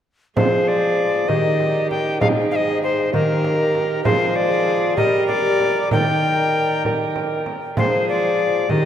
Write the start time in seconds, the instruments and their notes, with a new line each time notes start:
0.36 bassoon F3, lute F3 G#3 G#4, viola G#4, recorder C5, frame drum
0.68 recorder D5
1.28 lute D#3 A#3 D#4 G4, bassoon D#3, viola G4, recorder D#5, frame drum
1.60 frame drum
1.90 recorder G5, frame drum
2.20 lute G#2 C4 D#4 G#4, bassoon G#2, viola G#4, recorder F5, frame drum
2.51 recorder F5
2.56 recorder D#5
2.83 recorder C5
3.13 bassoon D#3, lute D#3 A#3 D#4 G4, viola G4, recorder A#4, frame drum
3.44 frame drum
3.75 frame drum
4.04 bassoon F3, lute F3 G#3 C4 G#4, viola G#4, recorder C5, frame drum
4.36 recorder D5
4.97 bassoon G3, lute G3 G4 A#4, viola A#4, recorder D#5, frame drum
5.27 recorder D5, frame drum
5.60 frame drum
5.91 bassoon D#3, lute D#3, viola A#4, recorder G5, frame drum
6.85 lute G4 A#4, frame drum
7.16 frame drum
7.46 frame drum
7.76 bassoon F3, lute F3 G#3 F4 G#4, viola G#4, recorder C5, frame drum
8.09 recorder D5
8.69 bassoon D#3, lute D#3 G4 A#4, viola G4, recorder D#5, frame drum